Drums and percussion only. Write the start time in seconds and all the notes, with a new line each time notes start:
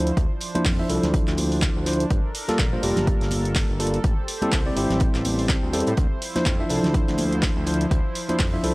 0.07 closed hi-hat
0.17 kick, closed hi-hat
0.41 closed hi-hat, open hi-hat
0.55 closed hi-hat, high conga
0.65 kick, snare, clap, closed hi-hat, open hi-hat
0.89 closed hi-hat, open hi-hat
1.03 snare, closed hi-hat, low conga
1.14 kick, closed hi-hat
1.27 snare, clap, closed hi-hat
1.38 closed hi-hat, open hi-hat, high conga
1.52 open hi-hat
1.62 kick, snare, clap, closed hi-hat
1.86 snare, closed hi-hat, open hi-hat
1.93 closed hi-hat
2.00 closed hi-hat
2.10 kick, closed hi-hat
2.35 closed hi-hat, open hi-hat
2.49 snare, closed hi-hat, high conga
2.59 kick, snare, clap, closed hi-hat
2.83 closed hi-hat, open hi-hat
2.96 snare, closed hi-hat, low conga
3.07 kick, closed hi-hat
3.21 snare, closed hi-hat
3.31 closed hi-hat, open hi-hat, high conga
3.45 closed hi-hat
3.55 kick, snare, clap, closed hi-hat, open hi-hat
3.80 closed hi-hat, open hi-hat
3.87 closed hi-hat
3.94 closed hi-hat
4.04 kick, closed hi-hat
4.28 closed hi-hat, open hi-hat
4.42 closed hi-hat, high conga
4.52 kick, snare, clap, closed hi-hat, open hi-hat
4.77 closed hi-hat, open hi-hat
4.90 snare, closed hi-hat, low conga
5.00 kick, closed hi-hat
5.15 snare, clap, closed hi-hat
5.25 closed hi-hat, open hi-hat, high conga
5.39 open hi-hat
5.49 kick, snare, clap, closed hi-hat
5.73 snare, closed hi-hat, open hi-hat
5.80 closed hi-hat
5.87 closed hi-hat
5.97 kick, closed hi-hat
6.22 closed hi-hat, open hi-hat
6.36 snare, closed hi-hat, high conga
6.45 kick, snare, clap, closed hi-hat
6.69 closed hi-hat, open hi-hat
6.83 snare, closed hi-hat, low conga
6.94 kick, closed hi-hat
7.08 snare, closed hi-hat
7.18 closed hi-hat, open hi-hat, high conga
7.33 closed hi-hat
7.42 kick, snare, clap, closed hi-hat, open hi-hat
7.67 closed hi-hat, open hi-hat
7.74 closed hi-hat
7.81 closed hi-hat
7.91 kick, closed hi-hat
8.15 closed hi-hat, open hi-hat
8.29 closed hi-hat, high conga
8.39 kick, snare, clap, closed hi-hat, open hi-hat
8.64 closed hi-hat, open hi-hat